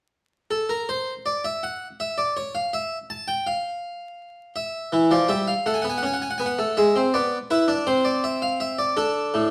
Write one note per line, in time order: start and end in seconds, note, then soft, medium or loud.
0.51 0.69 A4 medium
0.69 0.88 A#4 medium
0.89 1.12 C5 medium
1.26 1.44 D5 medium
1.44 1.62 E5 medium
1.63 1.86 F#5 medium
2.00 2.18 E5 medium
2.18 2.36 D5 medium
2.37 2.55 C#5 medium
2.55 2.73 F5 medium
2.73 2.96 E5 medium
3.10 3.28 A5 medium
3.28 3.46 G5 medium
3.47 4.53 F5 medium
4.56 5.09 E5 medium
4.92 5.10 E3 medium
5.11 5.29 F3 medium
5.11 5.29 D5 medium
5.28 5.52 G3 medium
5.28 5.47 E5 medium
5.47 5.65 F5 medium
5.66 5.84 A3 medium
5.66 5.74 F#5 soft
5.74 5.82 G#5 soft
5.82 6.02 B3 medium
5.82 5.90 F#5 medium
5.90 5.98 G#5 medium
5.98 6.06 F#5 medium
6.03 6.26 C#4 medium
6.03 6.14 G#5 medium
6.13 6.22 F#5 soft
6.22 6.30 G#5 medium
6.30 6.38 F#5 medium
6.38 6.58 B3 medium
6.38 6.46 G#5 medium
6.46 6.75 F#5 medium
6.58 6.76 A3 medium
6.77 6.95 G#3 medium
6.77 7.00 E5 medium
6.96 7.13 C4 medium
7.14 7.37 B3 medium
7.14 7.36 D5 medium
7.50 7.68 E4 medium
7.50 7.73 B4 medium
7.68 7.86 D4 medium
7.87 8.93 C4 medium
7.87 8.04 C5 medium
8.05 8.22 D5 medium
8.24 8.41 E5 medium
8.42 8.60 F5 medium
8.60 8.78 E5 medium
8.78 8.96 D5 medium
8.97 9.50 D4 medium
8.97 9.51 A4 medium
9.34 9.51 A2 medium